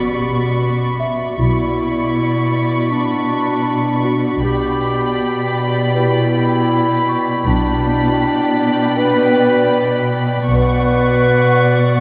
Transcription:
Already playing: cello section B2, celesta C#4 C#6, clarinet F#4, violin section D5 B5 C#6, impact
1.00 celesta E5
1.38 double bass section B1, cello section B2, clarinet E4, violin section D5 B5 C#6
2.91 clarinet D4
3.28 celesta C#6
4.04 clarinet F#4
4.42 double bass section B1, cello section B2, clarinet G4, violin section D5 G5 B5
5.95 clarinet E4, celesta G4 B4
7.09 celesta C#6
7.45 double bass section B1, cello section B2, clarinet D4, violin section D5 G5 B5
8.97 clarinet B4
10.49 double bass section B1, cello section B2, clarinet B4, violin section D5 F#5 C#6

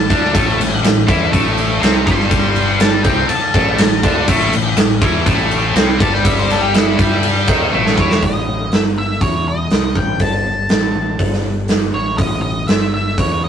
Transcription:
Already playing: lead electric guitar A5
0.10 picked electric bass D2, distorted electric guitar D3 D4, kick, crash
0.23 snare
0.34 picked electric bass A1, distorted electric guitar A2 A3, kick, crash
0.59 picked electric bass A1, distorted electric guitar A2, snare, crash
0.83 picked electric bass A1, distorted electric guitar A2, snare, crash
1.07 picked electric bass E2, distorted electric guitar E3 E4, kick, crash
1.31 picked electric bass A1, distorted electric guitar A2 A3, kick, crash
1.58 crash
1.80 picked electric bass C2, distorted electric guitar C3 C4, snare, crash
2.06 picked electric bass G1, distorted electric guitar G2 G3, lead electric guitar C6, kick, crash
2.20 snare
2.31 kick, crash
2.56 crash
2.80 lead electric guitar A5, snare, crash
3.04 picked electric bass C2, distorted electric guitar C3 C4, lead electric guitar G5, kick, crash
3.29 lead electric guitar A5, muted picked electric bass stroke, muted distorted electric guitar stroke, crash
3.54 picked electric bass A1, distorted electric guitar A2 A3, kick, crash
3.78 picked electric bass A1, distorted electric guitar A2, snare, crash
4.03 picked electric bass D2, distorted electric guitar D3 D4, kick, crash
4.28 picked electric bass A1, distorted electric guitar A2 A3, kick, crash
4.52 picked electric bass A1, distorted electric guitar A2, crash
4.76 picked electric bass A1, distorted electric guitar A2, snare, crash
5.02 picked electric bass E2, distorted electric guitar E3 E4, kick, crash
5.26 picked electric bass A1, distorted electric guitar A2 A3, kick, crash
5.51 crash
5.74 picked electric bass C2, distorted electric guitar C3 C4, snare, crash
5.89 lead electric guitar C6
5.99 picked electric bass G1, distorted electric guitar G2 G3, lead electric guitar A5, kick, crash
6.14 lead electric guitar G5, snare
6.25 lead electric guitar E5, kick, crash
6.39 lead electric guitar C5
6.50 lead electric guitar A4, snare, crash
6.61 lead electric guitar G4
6.74 lead electric guitar E4, snare, crash
6.98 picked electric bass G2, distorted electric guitar G3 G4, lead electric guitar E4, kick, crash
7.23 crash
7.47 picked electric bass D#2, distorted electric guitar D#3 D#4, kick, crash
7.72 picked electric bass A1, distorted electric guitar A2 A3, high tom
7.86 snare
7.97 picked electric bass E2, distorted electric guitar E3 E4, lead electric guitar C#5, kick
8.11 snare
8.22 picked electric bass A1, lead electric guitar D#5, kick, open hi-hat
8.71 picked electric bass G1, lead electric guitar E5, snare, open hi-hat
8.98 lead electric guitar E5
9.21 picked electric bass E2, lead electric guitar C#5, kick, open hi-hat
9.48 lead electric guitar D#5
9.71 picked electric bass C2, snare, open hi-hat
9.96 picked electric bass A1, lead electric guitar G5, kick
10.20 picked electric bass G1, lead electric guitar A5, kick, open hi-hat
10.69 picked electric bass A1, snare, open hi-hat
10.94 picked electric bass A1
11.19 picked electric bass G1, kick, open hi-hat
11.33 snare
11.68 snare, open hi-hat
11.93 picked electric bass A1, lead electric guitar C#5
12.18 picked electric bass A1, lead electric guitar D#5, kick, open hi-hat
12.42 lead electric guitar D#5
12.68 picked electric bass G1, lead electric guitar E5, snare, open hi-hat
12.94 lead electric guitar E5
13.18 picked electric bass E2, lead electric guitar C#5, kick, open hi-hat
13.44 lead electric guitar D#5

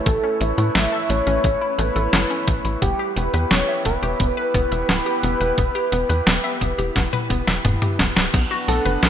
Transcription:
Already playing: analog synth pad A3 E4 B4 C#5
0.06 analog synth bass A1, synth arpeggio sound A3, analog synth lead A4, kick, closed hi-hat
0.23 synth arpeggio sound C#4
0.41 analog synth bass A1, synth arpeggio sound A3, analog synth lead C#5, closed hi-hat
0.58 analog synth bass A2, synth arpeggio sound E4, closed hi-hat
0.75 analog synth bass A1, synth arpeggio sound A3, analog synth lead E5, snare, closed hi-hat
0.92 synth arpeggio sound A4
1.10 analog synth bass A1, synth arpeggio sound A3, analog synth lead C#5, closed hi-hat
1.27 analog synth bass A1, synth arpeggio sound C#4, closed hi-hat
1.44 analog synth bass A1, synth arpeggio sound A3, kick, closed hi-hat
1.61 synth arpeggio sound E4
1.78 analog synth bass A1, synth arpeggio sound A3, analog synth lead B4, closed hi-hat
1.96 analog synth bass A1, synth arpeggio sound A4, closed hi-hat
2.13 analog synth bass G1, synth arpeggio sound A3, snare, closed hi-hat
2.30 synth arpeggio sound C#4, closed hi-hat
2.47 analog synth bass A1, synth arpeggio sound A3, kick, closed hi-hat
2.65 analog synth bass A1, synth arpeggio sound E4, closed hi-hat
2.82 analog synth bass E1, synth arpeggio sound B3, analog synth lead G4, analog synth pad G4, kick, closed hi-hat
2.99 synth arpeggio sound G4
3.16 analog synth bass E1, synth arpeggio sound B3, analog synth lead B4, closed hi-hat
3.34 analog synth bass E2, synth arpeggio sound B4, closed hi-hat
3.51 analog synth bass E1, synth arpeggio sound B3, analog synth lead C#5, snare, closed hi-hat
3.68 synth arpeggio sound E5
3.85 analog synth bass E1, synth arpeggio sound B3, analog synth lead B4, kick, closed hi-hat
4.03 analog synth bass E1, synth arpeggio sound G4, closed hi-hat
4.20 analog synth bass E1, synth arpeggio sound B3, kick, closed hi-hat
4.37 synth arpeggio sound B4
4.54 analog synth bass E1, synth arpeggio sound B3, kick, closed hi-hat
4.72 analog synth bass E1, synth arpeggio sound E5, closed hi-hat
4.89 analog synth bass D1, synth arpeggio sound B3, snare, closed hi-hat
5.06 synth arpeggio sound G4, closed hi-hat
5.23 analog synth bass E1, synth arpeggio sound B3, closed hi-hat
5.41 analog synth bass E1, synth arpeggio sound B4, closed hi-hat
5.58 analog synth bass E1, synth arpeggio sound B3, kick, closed hi-hat
5.75 synth arpeggio sound G4, closed hi-hat
5.92 analog synth bass E1, synth arpeggio sound B3, closed hi-hat
6.09 analog synth bass E2, synth arpeggio sound B4, closed hi-hat
6.27 analog synth bass E1, synth arpeggio sound B3, snare, closed hi-hat
6.44 synth arpeggio sound E5, closed hi-hat
6.61 analog synth bass E1, synth arpeggio sound B3, kick, closed hi-hat
6.78 analog synth bass E1, synth arpeggio sound G4, closed hi-hat
6.96 analog synth bass E1, synth arpeggio sound B3, kick, snare, closed hi-hat
7.13 synth arpeggio sound B4, closed hi-hat, high tom
7.30 analog synth bass E1, synth arpeggio sound B3, kick, closed hi-hat
7.47 analog synth bass E1, synth arpeggio sound E5, snare, closed hi-hat
7.65 analog synth bass E1, synth arpeggio sound B3, closed hi-hat, mid tom
7.82 synth arpeggio sound G4, closed hi-hat, mid tom
7.99 analog synth bass E1, synth arpeggio sound B3, kick, snare, closed hi-hat
8.16 analog synth bass D1, synth arpeggio sound B4, snare, closed hi-hat
8.34 analog synth bass B1, synth arpeggio sound B3, analog synth pad B3 D4 B4 F#5, kick, closed hi-hat, crash
8.51 synth arpeggio sound F#4
8.68 analog synth bass B1, synth arpeggio sound B3, analog synth lead A4, open hi-hat
8.85 analog synth bass F#1, synth arpeggio sound B4, closed hi-hat
9.03 analog synth bass B1, synth arpeggio sound B3, analog synth lead B4, snare, closed hi-hat

